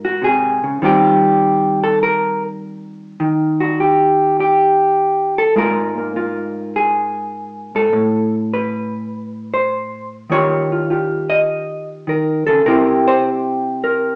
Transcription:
hollow-body jazz guitar
Already playing: G#2 G#3 A#3 A#4
0.05 F#4
0.22 C3 G#4
0.64 C#3
0.82 D#3 G3 C4 F4 G4
1.84 A4
2.03 A#4
3.20 D#3
3.60 F#4
3.80 G4
4.40 G4
5.38 A4
5.56 G#2 G#3 A#3 F4 A#4
5.98 A#3
6.16 A#3 F4
6.76 G#4
7.75 G#2 A4
7.93 A2
8.54 B4
9.54 C5
10.30 D#3 A#3 F4 G4 C#5
10.72 F4
10.90 F4 G4
11.30 D#5
12.07 D#3 A#4
12.47 C#3 A4
12.66 C3 C4 E4 G4 A#4
13.08 C5
13.84 A#4

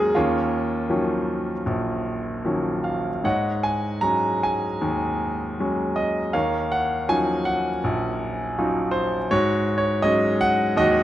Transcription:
grand piano
Already playing: D#2 G#2 F#3 G#3 C#4 D#4 G#4 A#4
0.15 D#2 A#3 C#4 F4
0.90 D#3 F3 F#3 C#4
1.66 A#1
2.45 D#3 F3 F#3 C#4
2.84 F5
3.24 G#2 C#5 D#5 F#5
3.63 G#5
4.01 F#3 G#3 C#4 A#5
4.43 G#5
4.81 D#2
5.60 F#3 G#3 C#4
5.96 D#5
6.33 D#2 A#4 C#5 F5
6.72 F#5
7.09 F3 F#3 C#4 D#4 G#5
7.45 F#5
7.84 A#1
8.58 F#3 C#4 D#4 F4
8.91 C5
9.31 G#2 F#4 C#5
9.78 C#5
10.02 F#3 G#3 C#4 D#5
10.41 F#5
10.77 D#2 F#4 D#5

